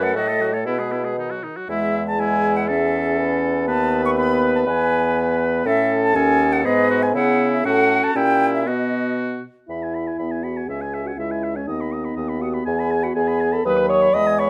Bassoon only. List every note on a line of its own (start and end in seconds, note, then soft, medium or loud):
0.00 0.17 F#2 loud
0.15 0.68 A2 medium
0.66 1.43 B2 medium
1.68 3.69 E2 medium
3.67 4.66 D#2 loud
4.66 5.64 E2 medium
5.65 6.16 A2 loud
6.15 6.66 D#2 loud
6.64 7.16 G#2 loud
7.14 7.64 C#3 medium
7.64 8.01 A2 medium
8.15 8.68 A#2 medium
8.66 9.44 B2 medium
9.69 10.13 E2 medium
10.19 10.62 E2 medium
10.68 11.12 C#2 medium
11.18 11.62 C#2 medium
11.68 12.11 D#2 medium
12.17 12.61 D#2 medium
12.67 13.10 E2 medium
13.16 13.59 E2 medium
13.65 14.09 D#2 medium
14.14 14.50 E2 medium